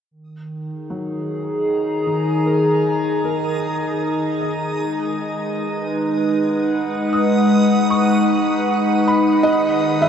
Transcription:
0.11 D#3 D#6
0.53 D#4
0.72 G#4
0.90 F#3
1.24 A#5
2.07 D#3
2.46 A#4
3.24 A#4
4.41 D#5
4.80 G#3
5.36 B4
6.21 F#5
7.13 D#6
7.90 C#6
9.08 B5
9.43 D#3 G#3 D#4 D#5 G#6
10.02 E5

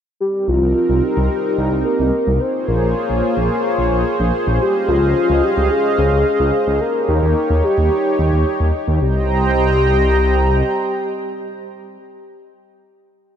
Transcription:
0.20 C4 D#4 G4 A#4
0.48 C2 F4
0.62 C2
0.89 C2
1.03 G4
1.17 C2
1.58 C2
1.72 C2
1.85 A#4
1.99 C2
2.27 C2
2.40 A#3 F4 G#4 C5 C#5
2.68 A#1 A#4
2.82 A#1
3.10 A#1
3.37 A#1
3.78 A#1
3.92 A#1
4.20 A#1
4.47 A#1
4.61 C#4 G4 D#5 F5
4.88 C#2 F4
5.02 C#2
5.30 C#2
5.43 G4
5.57 C#2
5.71 G#4
5.98 C#2
6.12 C#2
6.40 C#2
6.67 C#2
6.81 D#4 G4 A#4 C#5
7.09 D#2
7.22 D#2
7.50 D#2
7.64 G4
7.78 D#2
8.19 D#2
8.33 D#2
8.60 D#2
8.88 D#2
9.01 C2 C4 G4 C5 D#5 G5 A#5

